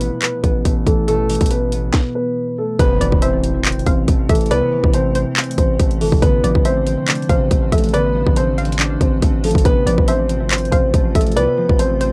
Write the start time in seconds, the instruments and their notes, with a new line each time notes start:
Already playing: 808-style bass A1, harp B2 E3 A3, grand piano B3 B4
0.01 harp B3, closed hi-hat
0.22 harp B4, clap, closed hi-hat
0.44 808-style bass A1, harp B3, grand piano B3 B4, kick, closed hi-hat
0.65 808-style bass A1, harp A3, kick, closed hi-hat
0.86 808-style bass A1, harp E3, grand piano A3 A4, kick, closed hi-hat
1.08 harp B2, grand piano A3 A4, closed hi-hat
1.29 harp E3, closed hi-hat, open hi-hat
1.35 closed hi-hat
1.41 808-style bass A1, kick, closed hi-hat
1.46 closed hi-hat
1.51 harp A3, grand piano B3 B4, closed hi-hat
1.72 harp B3, closed hi-hat
1.94 kick, snare
2.15 grand piano B3 B4
2.58 grand piano A3 A4
2.79 808-style bass A1, ambient pad C3 E3 A3, harp C3, grand piano B3 B4, kick, closed hi-hat, impact
3.01 808-style bass A1, harp E3, synth pluck D5, closed hi-hat
3.12 808-style bass A1, kick
3.22 harp A3, grand piano C4 C5, synth pluck E5, closed hi-hat
3.44 closed hi-hat
3.55 808-style bass G#1
3.65 harp C4, clap, closed hi-hat
3.72 closed hi-hat
3.79 closed hi-hat
3.86 808-style bass A1, grand piano C4 C5, synth pluck F5, kick, closed hi-hat
4.08 808-style bass A1, harp A3, kick, closed hi-hat
4.29 808-style bass A1, harp E3, grand piano A3 A4, synth pluck E5, kick, closed hi-hat
4.35 closed hi-hat
4.41 closed hi-hat
4.46 closed hi-hat
4.51 808-style bass C2, harp C3, grand piano B3 B4, synth pluck D5, closed hi-hat
4.72 harp E3
4.84 808-style bass A1, kick
4.94 harp A3, grand piano C4 C5, closed hi-hat
5.15 synth pluck C5, closed hi-hat
5.37 harp C4, clap, closed hi-hat
5.44 closed hi-hat
5.51 closed hi-hat
5.58 808-style bass A1, grand piano C4 C5, kick, closed hi-hat
5.79 808-style bass A1, harp A3, kick, closed hi-hat
5.91 closed hi-hat
6.01 808-style bass G#1, harp E3, grand piano A3 A4, open hi-hat
6.12 808-style bass A1, kick
6.22 808-style bass A1, ambient pad C3 F3 D4, harp D3, grand piano B3 B4, kick, closed hi-hat
6.44 808-style bass A1, harp F3, synth pluck D5, closed hi-hat
6.55 808-style bass A1, kick
6.65 harp A3, grand piano C4 C5, synth pluck E5, closed hi-hat
6.87 harp C4, closed hi-hat
7.08 harp D4, clap, closed hi-hat
7.15 closed hi-hat
7.22 closed hi-hat
7.29 808-style bass A1, harp C3, grand piano C4 C5, synth pluck F5, kick, closed hi-hat
7.51 808-style bass A1, harp A3, kick, closed hi-hat
7.72 808-style bass A1, harp F3, grand piano A3 A4, synth pluck E5, kick, closed hi-hat
7.78 closed hi-hat
7.84 closed hi-hat
7.89 closed hi-hat
7.93 harp D3, grand piano B3 B4, synth pluck D5, closed hi-hat
8.15 harp F3
8.27 808-style bass A1, kick
8.36 harp A3, grand piano C4 C5, closed hi-hat
8.58 harp C4, synth pluck F5, closed hi-hat
8.65 closed hi-hat
8.72 closed hi-hat
8.79 harp D4, clap, closed hi-hat
9.00 808-style bass A1, harp C4, grand piano C4 C5, kick, closed hi-hat
9.22 808-style bass A1, harp A3, kick, closed hi-hat
9.44 harp F3, grand piano A3 A4, closed hi-hat, open hi-hat
9.51 closed hi-hat
9.55 808-style bass G#1, kick, closed hi-hat
9.65 808-style bass A1, harp C3, grand piano B3 B4, ambient pad F4, kick, closed hi-hat
9.87 808-style bass A1, harp F3, synth pluck D5, closed hi-hat
9.98 808-style bass A1, kick
10.08 harp A3, grand piano C4 C5, synth pluck E5, closed hi-hat
10.29 harp C4, closed hi-hat
10.41 808-style bass G#1
10.51 harp C5, clap, closed hi-hat
10.58 closed hi-hat
10.65 closed hi-hat
10.72 808-style bass A1, grand piano C4 C5, synth pluck F5, kick, closed hi-hat
10.94 808-style bass A1, harp A3, kick, closed hi-hat
11.15 808-style bass A1, harp F3, grand piano A3 A4, synth pluck E5, kick, closed hi-hat
11.21 closed hi-hat
11.27 closed hi-hat
11.32 closed hi-hat
11.36 808-style bass C2, harp C3, grand piano B3 B4, synth pluck D5, closed hi-hat
11.57 harp F3
11.69 808-style bass A1, kick
11.79 harp A3, grand piano C4 C5, closed hi-hat
12.00 harp C4, synth pluck C5, closed hi-hat